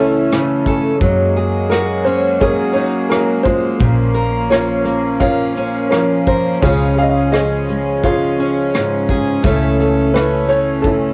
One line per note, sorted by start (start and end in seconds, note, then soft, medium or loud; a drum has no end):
0.00 0.97 C#2 medium
0.00 0.31 C#3 medium
0.00 0.99 E3 medium
0.00 0.97 A3 medium
0.00 0.99 A3 medium
0.00 0.96 C#4 medium
0.00 0.97 C#4 medium
0.00 2.06 C#4 medium
0.00 0.97 E4 medium
0.00 0.62 A4 medium
0.00 0.66 A4 medium
0.31 1.02 C#3 medium
0.31 cross-stick medium
0.31 closed hi-hat medium
0.66 0.97 A4 medium
0.66 kick medium
0.66 closed hi-hat soft
1.01 3.76 F#2 medium
1.01 3.10 F#3 medium
1.01 3.78 F#3 medium
1.01 3.78 G#3 medium
1.01 6.58 A#3 medium
1.01 kick medium
1.01 closed hi-hat medium
1.36 2.41 G#4 medium
1.36 closed hi-hat soft
1.70 2.75 F#4 medium
1.70 2.03 A#4 medium
1.70 cross-stick medium
1.70 closed hi-hat medium
2.05 4.50 C#4 medium
2.05 2.41 C5 medium
2.05 closed hi-hat soft
2.41 3.76 G#4 medium
2.41 3.80 G#4 medium
2.41 3.08 A#4 medium
2.41 2.72 C#5 medium
2.41 kick medium
2.41 closed hi-hat medium
2.73 2.93 D#4 medium
2.73 3.10 C#5 medium
2.73 closed hi-hat medium
3.09 3.45 F#3 medium
3.09 3.42 A#4 medium
3.09 cross-stick loud
3.09 closed hi-hat medium
3.43 3.80 G#3 medium
3.43 4.48 F4 medium
3.43 4.52 C5 medium
3.43 kick medium
3.43 closed hi-hat medium
3.80 6.58 A#1 medium
3.80 6.57 A#2 medium
3.80 9.40 F3 medium
3.80 11.13 C#4 medium
3.80 kick loud
3.80 closed hi-hat medium
4.15 6.26 A#4 medium
4.15 closed hi-hat soft
4.50 5.57 C#4 medium
4.50 5.87 F4 medium
4.50 5.19 A#4 medium
4.50 5.19 C#5 medium
4.50 cross-stick medium
4.50 closed hi-hat medium
4.85 6.57 A#3 medium
4.85 closed hi-hat soft
5.20 6.58 F4 medium
5.20 5.89 A#4 medium
5.20 6.58 C#5 medium
5.20 5.87 F5 medium
5.20 kick medium
5.20 closed hi-hat medium
5.56 6.63 C#4 medium
5.56 closed hi-hat soft
5.91 6.58 F3 medium
5.91 6.24 A#4 medium
5.91 cross-stick medium
5.91 closed hi-hat medium
6.27 6.58 A#4 medium
6.27 6.63 C5 medium
6.27 kick medium
6.27 closed hi-hat medium
6.62 9.40 C#2 medium
6.62 9.42 C#3 medium
6.62 7.68 G#3 medium
6.62 9.42 G#3 medium
6.62 7.32 C#4 medium
6.62 7.99 F4 medium
6.62 8.03 F4 medium
6.62 7.31 G#4 soft
6.62 6.97 G#4 medium
6.62 6.98 C#5 medium
6.62 kick loud
6.62 closed hi-hat medium
6.98 9.09 G#4 medium
6.98 7.05 F5 medium
6.98 closed hi-hat soft
7.02 7.10 D#5 medium
7.10 7.32 F5 medium
7.32 8.40 C#4 medium
7.32 8.03 G#4 medium
7.32 8.05 D#5 medium
7.32 cross-stick medium
7.32 closed hi-hat medium
7.69 9.40 G#3 soft
7.69 closed hi-hat soft
8.04 9.40 F4 medium
8.04 9.40 G#4 medium
8.04 9.05 C#5 medium
8.04 kick medium
8.04 closed hi-hat medium
8.40 9.44 C#4 medium
8.40 closed hi-hat soft
8.74 9.45 G#2 medium
8.74 cross-stick medium
8.74 closed hi-hat medium
9.09 9.44 G#4 medium
9.09 kick medium
9.09 closed hi-hat soft
9.43 11.13 C#2 medium
9.43 11.13 C#3 medium
9.43 11.13 E3 medium
9.43 11.13 A3 medium
9.43 10.47 A3 medium
9.43 10.14 C#4 medium
9.43 10.84 E4 medium
9.43 9.79 A4 medium
9.43 kick medium
9.43 closed hi-hat medium
9.80 11.13 A4 medium
9.80 closed hi-hat soft
10.14 11.13 C#4 medium
10.14 10.50 B4 medium
10.14 cross-stick medium
10.14 closed hi-hat medium
10.48 11.13 A3 medium
10.48 10.81 C#5 medium
10.48 closed hi-hat soft
10.82 11.13 E4 medium
10.82 11.13 A4 medium
10.82 kick medium
10.82 closed hi-hat medium
10.86 11.13 C#4 medium